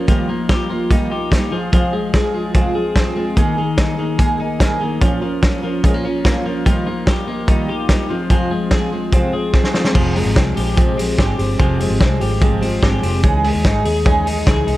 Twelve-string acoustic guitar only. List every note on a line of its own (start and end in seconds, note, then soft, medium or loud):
0.07 0.28 D#3 medium
0.07 0.29 G3 medium
0.07 0.29 A#3 medium
0.07 0.28 D#4 medium
0.07 0.26 F4 medium
0.27 0.49 A#3 soft
0.27 0.50 D#4 soft
0.27 0.49 F4 soft
0.49 0.70 G3 soft
0.49 0.70 A#3 medium
0.49 0.70 D#4 medium
0.49 0.68 F4 medium
0.69 0.90 A#3 soft
0.69 0.91 D#4 soft
0.69 0.90 F4 soft
0.90 1.11 D#3 medium
0.90 1.11 G3 medium
0.90 1.11 A#3 medium
0.90 1.11 D#4 medium
0.90 1.09 F4 medium
1.10 1.31 A#3 soft
1.10 1.32 D#4 soft
1.10 1.31 F4 medium
1.31 1.52 G3 medium
1.31 1.52 A#3 medium
1.31 1.53 D#4 medium
1.31 1.52 F4 medium
1.52 1.73 F3 soft
1.52 1.73 G#3 soft
1.52 1.73 F4 soft
1.52 1.73 G#4 soft
1.73 1.93 F2 medium
1.73 1.93 C3 medium
1.73 1.94 F3 medium
1.73 1.94 G#3 medium
1.73 1.93 F4 medium
1.73 1.92 G#4 medium
1.93 2.12 F3 soft
1.93 2.13 G#3 soft
1.93 2.14 F4 soft
1.93 2.13 G#4 soft
2.13 2.34 F3 medium
2.13 2.34 G#3 soft
2.13 2.33 F4 medium
2.13 2.32 G#4 medium
2.33 2.53 F3 soft
2.33 2.54 G#3 soft
2.33 2.54 F4 soft
2.33 2.54 G#4 medium
2.54 2.75 F2 medium
2.54 2.75 C3 medium
2.54 2.75 F3 medium
2.54 2.75 G#3 medium
2.54 2.75 F4 medium
2.54 2.73 G#4 medium
2.74 2.94 F3 soft
2.74 2.95 G#3 soft
2.74 2.96 F4 soft
2.74 2.95 G#4 medium
2.95 3.16 F3 medium
2.95 3.17 G#3 medium
2.95 3.16 F4 medium
2.95 3.14 G#4 medium
3.15 3.36 F3 soft
3.15 3.35 G#3 soft
3.15 3.37 F4 medium
3.15 3.36 G#4 soft
3.36 3.57 G#3 medium
3.36 3.57 A#3 medium
3.36 3.58 D#4 medium
3.36 3.56 G#4 medium
3.57 3.77 A#3 soft
3.57 3.78 D#4 soft
3.57 3.78 G#4 medium
3.77 3.98 G#3 medium
3.77 3.99 A#3 medium
3.77 3.98 D#4 medium
3.77 3.97 G#4 medium
3.98 4.18 A#3 soft
3.98 4.19 D#4 soft
3.98 4.19 G#4 medium
4.18 4.39 G#3 medium
4.18 4.40 A#3 medium
4.18 4.39 D#4 medium
4.18 4.37 G#4 medium
4.38 4.59 A#3 soft
4.38 4.59 D#4 soft
4.38 4.59 G#4 soft
4.59 4.80 G#3 medium
4.59 4.81 A#3 medium
4.59 4.80 D#4 medium
4.59 4.78 G#4 medium
4.80 5.02 A#3 soft
4.80 5.02 D#4 soft
4.80 5.01 G#4 medium
5.01 5.22 A#2 medium
5.01 5.22 F3 medium
5.01 5.22 C#4 medium
5.01 5.22 F4 medium
5.01 5.20 A#4 medium
5.21 5.41 C#4 soft
5.21 5.43 F4 soft
5.21 5.42 A#4 soft
5.41 5.63 F3 soft
5.41 5.63 C#4 medium
5.41 5.63 F4 medium
5.41 5.61 A#4 medium
5.62 5.83 C#4 soft
5.62 5.84 F4 soft
5.62 5.83 A#4 soft
5.83 6.04 A#2 medium
5.83 6.04 F3 medium
5.83 6.05 C#4 medium
5.83 6.04 F4 medium
5.83 6.02 A#4 medium
6.03 6.24 C#4 soft
6.03 6.25 F4 soft
6.03 6.25 A#4 medium
6.24 6.45 F3 medium
6.24 6.46 C#4 medium
6.24 6.45 F4 medium
6.24 6.43 A#4 medium
6.44 6.66 C#4 soft
6.44 6.66 F4 medium
6.44 6.65 A#4 medium
6.66 6.87 D#3 medium
6.66 6.87 G3 medium
6.66 6.87 A#3 medium
6.66 6.86 D#4 medium
6.66 6.84 F4 medium
6.85 7.06 A#3 soft
6.85 7.07 D#4 soft
6.85 7.07 F4 medium
7.06 7.27 G3 medium
7.06 7.28 A#3 medium
7.06 7.27 D#4 medium
7.06 7.26 F4 medium
7.27 7.48 A#3 soft
7.27 7.48 D#4 soft
7.27 7.48 F4 soft
7.47 7.69 D#3 medium
7.47 7.69 G3 medium
7.47 7.69 A#3 medium
7.47 7.69 D#4 medium
7.47 7.67 F4 medium
7.68 7.88 A#3 soft
7.68 7.89 D#4 soft
7.68 7.89 F4 medium
7.88 8.10 G3 medium
7.88 8.10 A#3 medium
7.88 8.10 D#4 medium
7.88 8.08 F4 medium
8.09 8.29 F3 soft
8.09 8.29 G#3 soft
8.09 8.30 C4 soft
8.09 8.30 F4 medium
8.29 8.51 F2 medium
8.29 8.51 C3 medium
8.29 8.51 F3 medium
8.29 8.51 G#3 medium
8.29 8.50 C4 medium
8.29 8.49 F4 medium
8.50 8.69 F3 soft
8.50 8.71 G#3 soft
8.50 8.72 C4 soft
8.50 8.71 F4 soft
8.71 8.92 F3 medium
8.71 8.92 G#3 medium
8.71 8.91 C4 medium
8.71 8.90 F4 medium
8.91 9.12 F3 soft
8.91 9.13 G#3 soft
8.91 9.13 C4 soft
8.91 9.12 F4 soft
9.12 9.33 F2 medium
9.12 9.33 C3 medium
9.12 9.34 F3 medium
9.12 9.33 G#3 medium
9.12 9.32 C4 medium
9.12 9.31 F4 medium
9.32 9.51 F3 soft
9.32 9.53 G#3 soft
9.32 9.53 C4 soft
9.32 9.54 F4 medium
9.53 9.74 F3 medium
9.53 9.74 G#3 medium
9.53 9.73 C4 medium
9.53 9.72 F4 medium
9.73 9.94 F3 soft
9.73 9.94 G#3 soft
9.73 9.95 C4 soft
9.73 9.94 F4 medium
9.94 10.15 F2 medium
9.94 10.16 C3 medium
9.94 10.16 F3 medium
9.94 10.15 G#3 medium
9.94 10.14 C4 medium
9.94 10.13 G4 medium
10.14 10.33 F3 soft
10.14 10.35 G#3 soft
10.14 10.36 C4 medium
10.14 10.35 G4 medium
10.35 10.56 F3 medium
10.35 10.56 G#3 medium
10.35 10.55 C4 medium
10.35 10.54 G4 medium
10.55 10.76 F3 soft
10.55 10.76 G#3 soft
10.55 10.77 C4 soft
10.55 10.77 G4 soft
10.76 10.97 F2 medium
10.76 10.98 C3 medium
10.76 10.98 F3 medium
10.76 10.98 G#3 medium
10.76 10.97 C4 medium
10.76 10.96 G4 medium
10.97 11.16 F3 soft
10.97 11.17 G#3 medium
10.97 11.18 C4 medium
10.97 11.18 G4 medium
11.17 11.38 F3 medium
11.17 11.39 G#3 medium
11.17 11.38 C4 medium
11.17 11.36 G4 medium
11.37 11.58 F3 soft
11.37 11.59 G#3 medium
11.37 11.59 C4 soft
11.37 11.59 G4 medium
11.58 11.79 F2 medium
11.58 11.80 C3 medium
11.58 11.80 F3 medium
11.58 11.80 G#3 medium
11.58 11.79 C4 medium
11.58 11.78 G4 medium
11.79 11.98 F3 soft
11.79 11.99 G#3 soft
11.79 12.00 C4 medium
11.79 12.00 G4 medium
12.00 12.21 F3 medium
12.00 12.21 G#3 medium
12.00 12.20 C4 medium
12.00 12.19 G4 medium
12.20 12.40 F3 soft
12.20 12.41 G#3 soft
12.20 12.41 C4 soft
12.20 12.41 G4 medium
12.41 12.62 F2 medium
12.41 12.62 C3 medium
12.41 12.62 F3 medium
12.41 12.62 G#3 medium
12.41 12.61 C4 medium
12.41 12.60 G4 medium
12.61 12.81 F3 medium
12.61 12.82 G#3 medium
12.61 12.83 C4 medium
12.61 12.82 G4 medium
12.82 13.03 F3 medium
12.82 13.03 G#3 medium
12.82 13.02 C4 medium
12.82 13.01 G4 medium
13.02 13.23 F3 soft
13.02 13.23 G#3 medium
13.02 13.24 C4 medium
13.02 13.23 G4 medium
13.23 13.44 C#3 medium
13.23 13.44 E3 medium
13.23 13.45 G#3 medium
13.23 13.44 D#4 medium
13.23 13.42 G#4 medium
13.43 13.64 G#3 soft
13.43 13.65 D#4 soft
13.43 13.64 G#4 medium
13.64 13.85 E3 medium
13.64 13.86 G#3 medium
13.64 13.85 D#4 medium
13.64 13.83 G#4 medium
13.84 14.05 G#3 soft
13.84 14.06 D#4 medium
13.84 14.05 G#4 medium
14.05 14.26 C#3 medium
14.05 14.26 E3 medium
14.05 14.27 G#3 medium
14.05 14.26 D#4 medium
14.05 14.25 G#4 loud
14.26 14.46 G#3 soft
14.26 14.47 D#4 medium
14.26 14.47 G#4 medium
14.46 14.67 E3 medium
14.46 14.68 G#3 medium
14.46 14.67 D#4 medium
14.46 14.65 G#4 medium
14.67 14.77 G#3 soft
14.67 14.77 D#4 soft
14.67 14.77 G#4 medium